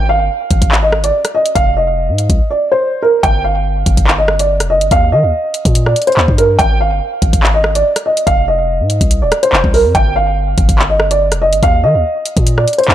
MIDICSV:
0, 0, Header, 1, 4, 480
1, 0, Start_track
1, 0, Tempo, 419580
1, 1779, Time_signature, 4, 2, 24, 8
1, 14811, End_track
2, 0, Start_track
2, 0, Title_t, "Upright piano"
2, 0, Program_c, 0, 0
2, 105, Note_on_c, 0, 77, 87
2, 904, Note_off_c, 0, 77, 0
2, 946, Note_on_c, 0, 75, 76
2, 1147, Note_off_c, 0, 75, 0
2, 1188, Note_on_c, 0, 74, 79
2, 1519, Note_off_c, 0, 74, 0
2, 1539, Note_on_c, 0, 75, 78
2, 1740, Note_off_c, 0, 75, 0
2, 1777, Note_on_c, 0, 77, 98
2, 1979, Note_off_c, 0, 77, 0
2, 2022, Note_on_c, 0, 75, 75
2, 2822, Note_off_c, 0, 75, 0
2, 2866, Note_on_c, 0, 74, 69
2, 3067, Note_off_c, 0, 74, 0
2, 3107, Note_on_c, 0, 72, 80
2, 3438, Note_off_c, 0, 72, 0
2, 3460, Note_on_c, 0, 70, 80
2, 3661, Note_off_c, 0, 70, 0
2, 3698, Note_on_c, 0, 79, 107
2, 3899, Note_off_c, 0, 79, 0
2, 3939, Note_on_c, 0, 77, 81
2, 4741, Note_off_c, 0, 77, 0
2, 4787, Note_on_c, 0, 75, 74
2, 4988, Note_off_c, 0, 75, 0
2, 5029, Note_on_c, 0, 74, 73
2, 5359, Note_off_c, 0, 74, 0
2, 5377, Note_on_c, 0, 75, 80
2, 5579, Note_off_c, 0, 75, 0
2, 5624, Note_on_c, 0, 77, 94
2, 5823, Note_off_c, 0, 77, 0
2, 5861, Note_on_c, 0, 75, 81
2, 6662, Note_off_c, 0, 75, 0
2, 6706, Note_on_c, 0, 74, 66
2, 6907, Note_off_c, 0, 74, 0
2, 6947, Note_on_c, 0, 72, 78
2, 7278, Note_off_c, 0, 72, 0
2, 7301, Note_on_c, 0, 70, 82
2, 7501, Note_off_c, 0, 70, 0
2, 7534, Note_on_c, 0, 79, 111
2, 7737, Note_off_c, 0, 79, 0
2, 7785, Note_on_c, 0, 77, 83
2, 8584, Note_off_c, 0, 77, 0
2, 8628, Note_on_c, 0, 75, 79
2, 8828, Note_off_c, 0, 75, 0
2, 8869, Note_on_c, 0, 74, 77
2, 9200, Note_off_c, 0, 74, 0
2, 9219, Note_on_c, 0, 75, 76
2, 9420, Note_off_c, 0, 75, 0
2, 9457, Note_on_c, 0, 77, 100
2, 9659, Note_off_c, 0, 77, 0
2, 9701, Note_on_c, 0, 75, 74
2, 10502, Note_off_c, 0, 75, 0
2, 10548, Note_on_c, 0, 74, 69
2, 10749, Note_off_c, 0, 74, 0
2, 10786, Note_on_c, 0, 72, 78
2, 11118, Note_off_c, 0, 72, 0
2, 11141, Note_on_c, 0, 70, 81
2, 11341, Note_off_c, 0, 70, 0
2, 11380, Note_on_c, 0, 79, 103
2, 11580, Note_off_c, 0, 79, 0
2, 11621, Note_on_c, 0, 77, 79
2, 12421, Note_off_c, 0, 77, 0
2, 12466, Note_on_c, 0, 75, 73
2, 12667, Note_off_c, 0, 75, 0
2, 12708, Note_on_c, 0, 74, 74
2, 13039, Note_off_c, 0, 74, 0
2, 13059, Note_on_c, 0, 75, 79
2, 13260, Note_off_c, 0, 75, 0
2, 13305, Note_on_c, 0, 77, 95
2, 13503, Note_off_c, 0, 77, 0
2, 13541, Note_on_c, 0, 75, 84
2, 14342, Note_off_c, 0, 75, 0
2, 14386, Note_on_c, 0, 74, 68
2, 14587, Note_off_c, 0, 74, 0
2, 14624, Note_on_c, 0, 72, 79
2, 14811, Note_off_c, 0, 72, 0
2, 14811, End_track
3, 0, Start_track
3, 0, Title_t, "808-style bass"
3, 0, Program_c, 1, 38
3, 0, Note_on_c, 1, 32, 106
3, 226, Note_on_c, 1, 31, 98
3, 243, Note_off_c, 1, 32, 0
3, 333, Note_off_c, 1, 31, 0
3, 579, Note_on_c, 1, 32, 101
3, 698, Note_off_c, 1, 32, 0
3, 705, Note_on_c, 1, 32, 95
3, 1275, Note_off_c, 1, 32, 0
3, 1779, Note_on_c, 1, 29, 111
3, 2386, Note_on_c, 1, 44, 100
3, 2403, Note_off_c, 1, 29, 0
3, 2614, Note_off_c, 1, 44, 0
3, 2626, Note_on_c, 1, 36, 102
3, 2739, Note_off_c, 1, 36, 0
3, 3699, Note_on_c, 1, 31, 111
3, 4390, Note_off_c, 1, 31, 0
3, 4419, Note_on_c, 1, 31, 106
3, 4538, Note_off_c, 1, 31, 0
3, 4545, Note_on_c, 1, 31, 105
3, 5266, Note_on_c, 1, 29, 98
3, 5283, Note_off_c, 1, 31, 0
3, 5442, Note_on_c, 1, 31, 98
3, 5459, Note_off_c, 1, 29, 0
3, 5610, Note_off_c, 1, 31, 0
3, 5620, Note_on_c, 1, 39, 105
3, 5859, Note_on_c, 1, 51, 100
3, 5876, Note_off_c, 1, 39, 0
3, 5987, Note_on_c, 1, 39, 96
3, 6004, Note_off_c, 1, 51, 0
3, 6094, Note_off_c, 1, 39, 0
3, 6466, Note_on_c, 1, 46, 94
3, 6805, Note_off_c, 1, 46, 0
3, 7060, Note_on_c, 1, 39, 102
3, 7182, Note_off_c, 1, 39, 0
3, 7187, Note_on_c, 1, 43, 101
3, 7526, Note_off_c, 1, 43, 0
3, 7539, Note_on_c, 1, 32, 111
3, 7907, Note_on_c, 1, 31, 96
3, 7924, Note_off_c, 1, 32, 0
3, 8014, Note_off_c, 1, 31, 0
3, 8260, Note_on_c, 1, 32, 106
3, 8382, Note_off_c, 1, 32, 0
3, 8386, Note_on_c, 1, 32, 96
3, 8956, Note_off_c, 1, 32, 0
3, 9460, Note_on_c, 1, 29, 109
3, 10066, Note_on_c, 1, 44, 100
3, 10083, Note_off_c, 1, 29, 0
3, 10294, Note_off_c, 1, 44, 0
3, 10306, Note_on_c, 1, 36, 102
3, 10547, Note_on_c, 1, 27, 95
3, 10564, Note_off_c, 1, 36, 0
3, 10654, Note_off_c, 1, 27, 0
3, 10900, Note_on_c, 1, 29, 104
3, 11022, Note_off_c, 1, 29, 0
3, 11028, Note_on_c, 1, 36, 104
3, 11267, Note_on_c, 1, 41, 95
3, 11284, Note_off_c, 1, 36, 0
3, 11374, Note_off_c, 1, 41, 0
3, 11380, Note_on_c, 1, 31, 112
3, 12071, Note_off_c, 1, 31, 0
3, 12100, Note_on_c, 1, 31, 105
3, 12222, Note_off_c, 1, 31, 0
3, 12226, Note_on_c, 1, 31, 105
3, 12946, Note_on_c, 1, 29, 100
3, 12964, Note_off_c, 1, 31, 0
3, 13123, Note_on_c, 1, 31, 95
3, 13140, Note_off_c, 1, 29, 0
3, 13291, Note_off_c, 1, 31, 0
3, 13300, Note_on_c, 1, 39, 103
3, 13538, Note_on_c, 1, 51, 97
3, 13556, Note_off_c, 1, 39, 0
3, 13666, Note_on_c, 1, 39, 97
3, 13683, Note_off_c, 1, 51, 0
3, 13773, Note_off_c, 1, 39, 0
3, 14146, Note_on_c, 1, 46, 94
3, 14485, Note_off_c, 1, 46, 0
3, 14739, Note_on_c, 1, 39, 104
3, 14811, Note_off_c, 1, 39, 0
3, 14811, End_track
4, 0, Start_track
4, 0, Title_t, "Drums"
4, 578, Note_on_c, 9, 42, 76
4, 579, Note_on_c, 9, 36, 101
4, 692, Note_off_c, 9, 42, 0
4, 693, Note_off_c, 9, 36, 0
4, 705, Note_on_c, 9, 36, 95
4, 706, Note_on_c, 9, 42, 80
4, 819, Note_on_c, 9, 39, 122
4, 820, Note_off_c, 9, 36, 0
4, 820, Note_off_c, 9, 42, 0
4, 933, Note_off_c, 9, 39, 0
4, 1058, Note_on_c, 9, 37, 101
4, 1172, Note_off_c, 9, 37, 0
4, 1187, Note_on_c, 9, 42, 78
4, 1301, Note_off_c, 9, 42, 0
4, 1425, Note_on_c, 9, 42, 83
4, 1426, Note_on_c, 9, 37, 70
4, 1540, Note_off_c, 9, 42, 0
4, 1541, Note_off_c, 9, 37, 0
4, 1665, Note_on_c, 9, 42, 78
4, 1779, Note_off_c, 9, 42, 0
4, 1779, Note_on_c, 9, 36, 112
4, 1779, Note_on_c, 9, 42, 74
4, 1893, Note_off_c, 9, 36, 0
4, 1894, Note_off_c, 9, 42, 0
4, 2498, Note_on_c, 9, 42, 77
4, 2613, Note_off_c, 9, 42, 0
4, 2625, Note_on_c, 9, 36, 97
4, 2627, Note_on_c, 9, 42, 77
4, 2740, Note_off_c, 9, 36, 0
4, 2741, Note_off_c, 9, 42, 0
4, 3699, Note_on_c, 9, 36, 110
4, 3700, Note_on_c, 9, 42, 77
4, 3813, Note_off_c, 9, 36, 0
4, 3814, Note_off_c, 9, 42, 0
4, 4419, Note_on_c, 9, 36, 102
4, 4419, Note_on_c, 9, 42, 78
4, 4533, Note_off_c, 9, 42, 0
4, 4534, Note_off_c, 9, 36, 0
4, 4545, Note_on_c, 9, 36, 96
4, 4546, Note_on_c, 9, 42, 78
4, 4659, Note_on_c, 9, 39, 120
4, 4660, Note_off_c, 9, 36, 0
4, 4661, Note_off_c, 9, 42, 0
4, 4773, Note_off_c, 9, 39, 0
4, 4898, Note_on_c, 9, 37, 100
4, 5013, Note_off_c, 9, 37, 0
4, 5027, Note_on_c, 9, 42, 83
4, 5141, Note_off_c, 9, 42, 0
4, 5265, Note_on_c, 9, 42, 86
4, 5266, Note_on_c, 9, 37, 69
4, 5379, Note_off_c, 9, 42, 0
4, 5381, Note_off_c, 9, 37, 0
4, 5505, Note_on_c, 9, 42, 74
4, 5619, Note_off_c, 9, 42, 0
4, 5619, Note_on_c, 9, 36, 111
4, 5619, Note_on_c, 9, 42, 75
4, 5734, Note_off_c, 9, 36, 0
4, 5734, Note_off_c, 9, 42, 0
4, 6339, Note_on_c, 9, 42, 78
4, 6453, Note_off_c, 9, 42, 0
4, 6466, Note_on_c, 9, 36, 98
4, 6467, Note_on_c, 9, 42, 80
4, 6580, Note_off_c, 9, 36, 0
4, 6580, Note_off_c, 9, 42, 0
4, 6580, Note_on_c, 9, 42, 94
4, 6695, Note_off_c, 9, 42, 0
4, 6708, Note_on_c, 9, 37, 71
4, 6820, Note_on_c, 9, 42, 69
4, 6822, Note_off_c, 9, 37, 0
4, 6883, Note_off_c, 9, 42, 0
4, 6883, Note_on_c, 9, 42, 60
4, 6947, Note_off_c, 9, 42, 0
4, 6947, Note_on_c, 9, 42, 47
4, 7003, Note_off_c, 9, 42, 0
4, 7003, Note_on_c, 9, 42, 39
4, 7059, Note_on_c, 9, 39, 108
4, 7118, Note_off_c, 9, 42, 0
4, 7173, Note_off_c, 9, 39, 0
4, 7187, Note_on_c, 9, 36, 92
4, 7302, Note_off_c, 9, 36, 0
4, 7302, Note_on_c, 9, 42, 80
4, 7416, Note_off_c, 9, 42, 0
4, 7540, Note_on_c, 9, 36, 111
4, 7540, Note_on_c, 9, 42, 76
4, 7654, Note_off_c, 9, 36, 0
4, 7655, Note_off_c, 9, 42, 0
4, 8260, Note_on_c, 9, 36, 97
4, 8260, Note_on_c, 9, 42, 79
4, 8374, Note_off_c, 9, 36, 0
4, 8374, Note_off_c, 9, 42, 0
4, 8386, Note_on_c, 9, 36, 97
4, 8388, Note_on_c, 9, 42, 82
4, 8500, Note_on_c, 9, 39, 119
4, 8501, Note_off_c, 9, 36, 0
4, 8503, Note_off_c, 9, 42, 0
4, 8614, Note_off_c, 9, 39, 0
4, 8740, Note_on_c, 9, 37, 102
4, 8854, Note_off_c, 9, 37, 0
4, 8869, Note_on_c, 9, 42, 83
4, 8983, Note_off_c, 9, 42, 0
4, 9106, Note_on_c, 9, 42, 87
4, 9107, Note_on_c, 9, 37, 68
4, 9221, Note_off_c, 9, 42, 0
4, 9222, Note_off_c, 9, 37, 0
4, 9347, Note_on_c, 9, 42, 76
4, 9460, Note_off_c, 9, 42, 0
4, 9460, Note_on_c, 9, 36, 110
4, 9460, Note_on_c, 9, 42, 76
4, 9574, Note_off_c, 9, 36, 0
4, 9574, Note_off_c, 9, 42, 0
4, 10179, Note_on_c, 9, 42, 75
4, 10293, Note_off_c, 9, 42, 0
4, 10306, Note_on_c, 9, 36, 97
4, 10307, Note_on_c, 9, 42, 80
4, 10420, Note_off_c, 9, 36, 0
4, 10420, Note_off_c, 9, 42, 0
4, 10420, Note_on_c, 9, 42, 94
4, 10534, Note_off_c, 9, 42, 0
4, 10659, Note_on_c, 9, 37, 98
4, 10659, Note_on_c, 9, 42, 67
4, 10773, Note_off_c, 9, 42, 0
4, 10774, Note_off_c, 9, 37, 0
4, 10788, Note_on_c, 9, 42, 81
4, 10899, Note_on_c, 9, 39, 110
4, 10902, Note_off_c, 9, 42, 0
4, 11014, Note_off_c, 9, 39, 0
4, 11028, Note_on_c, 9, 36, 91
4, 11142, Note_off_c, 9, 36, 0
4, 11143, Note_on_c, 9, 46, 57
4, 11257, Note_off_c, 9, 46, 0
4, 11380, Note_on_c, 9, 36, 108
4, 11380, Note_on_c, 9, 42, 76
4, 11494, Note_off_c, 9, 36, 0
4, 11495, Note_off_c, 9, 42, 0
4, 12099, Note_on_c, 9, 42, 77
4, 12100, Note_on_c, 9, 36, 102
4, 12213, Note_off_c, 9, 42, 0
4, 12214, Note_off_c, 9, 36, 0
4, 12226, Note_on_c, 9, 36, 98
4, 12228, Note_on_c, 9, 42, 79
4, 12340, Note_on_c, 9, 39, 116
4, 12341, Note_off_c, 9, 36, 0
4, 12342, Note_off_c, 9, 42, 0
4, 12455, Note_off_c, 9, 39, 0
4, 12579, Note_on_c, 9, 37, 99
4, 12693, Note_off_c, 9, 37, 0
4, 12708, Note_on_c, 9, 42, 82
4, 12822, Note_off_c, 9, 42, 0
4, 12946, Note_on_c, 9, 42, 88
4, 12947, Note_on_c, 9, 37, 69
4, 13060, Note_off_c, 9, 42, 0
4, 13062, Note_off_c, 9, 37, 0
4, 13185, Note_on_c, 9, 42, 75
4, 13300, Note_off_c, 9, 42, 0
4, 13300, Note_on_c, 9, 36, 113
4, 13301, Note_on_c, 9, 42, 76
4, 13414, Note_off_c, 9, 36, 0
4, 13415, Note_off_c, 9, 42, 0
4, 14020, Note_on_c, 9, 42, 76
4, 14134, Note_off_c, 9, 42, 0
4, 14146, Note_on_c, 9, 36, 98
4, 14147, Note_on_c, 9, 42, 83
4, 14261, Note_off_c, 9, 36, 0
4, 14261, Note_off_c, 9, 42, 0
4, 14261, Note_on_c, 9, 42, 94
4, 14375, Note_off_c, 9, 42, 0
4, 14388, Note_on_c, 9, 37, 74
4, 14501, Note_on_c, 9, 42, 68
4, 14503, Note_off_c, 9, 37, 0
4, 14564, Note_off_c, 9, 42, 0
4, 14564, Note_on_c, 9, 42, 58
4, 14627, Note_off_c, 9, 42, 0
4, 14627, Note_on_c, 9, 42, 47
4, 14683, Note_off_c, 9, 42, 0
4, 14683, Note_on_c, 9, 42, 39
4, 14739, Note_on_c, 9, 39, 107
4, 14798, Note_off_c, 9, 42, 0
4, 14811, Note_off_c, 9, 39, 0
4, 14811, End_track
0, 0, End_of_file